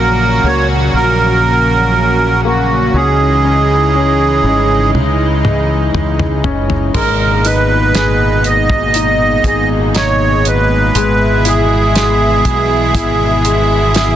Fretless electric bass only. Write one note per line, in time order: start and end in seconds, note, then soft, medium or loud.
0.00 0.41 A#1 medium
0.44 0.91 C#2 medium
0.94 2.90 A#1 medium
2.94 4.40 C#2 medium
4.44 4.91 G#1 medium
4.94 5.90 C#2 medium
5.94 6.41 C#2 medium
6.44 6.91 F#1 medium
6.94 9.41 G#1 medium
9.44 10.90 G#1 medium
10.95 12.41 G#1 medium
12.45 12.91 B1 medium
12.94 14.16 G#1 medium